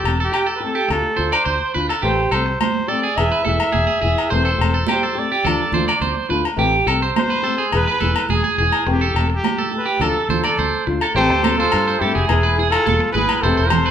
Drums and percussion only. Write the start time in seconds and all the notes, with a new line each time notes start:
0.05 low agogo
0.34 low agogo
0.90 low agogo
1.33 low agogo
1.90 low agogo
2.04 muted conga
2.32 muted conga, low agogo
2.60 high conga, low agogo
2.88 muted conga
3.16 muted conga, low agogo
3.45 high conga
3.60 low agogo
3.73 high conga
4.18 low agogo
4.31 muted conga
4.59 muted conga, low agogo
4.87 high conga, low agogo
5.16 muted conga
5.44 muted conga, low conga, low agogo
5.73 high conga, low conga
5.89 low agogo
6.02 high conga
6.45 low agogo
6.59 muted conga
6.88 muted conga, low agogo
7.16 high conga, low agogo
7.45 muted conga
7.72 muted conga, low agogo
8.01 high conga
8.16 low agogo
8.29 high conga
8.72 low agogo
8.88 muted conga
9.16 muted conga, low agogo
9.44 high conga, low agogo
9.73 muted conga
10.01 muted conga, low conga, low agogo
10.30 high conga, low conga
10.44 low agogo
10.58 high conga
11.01 low agogo
11.16 muted conga
11.44 high conga, low agogo
11.72 low agogo
12.02 muted conga
12.29 muted conga, low agogo
12.59 muted conga
12.72 low agogo
12.87 high conga
13.15 high conga
13.29 low agogo
13.44 muted conga
13.70 low conga, low agogo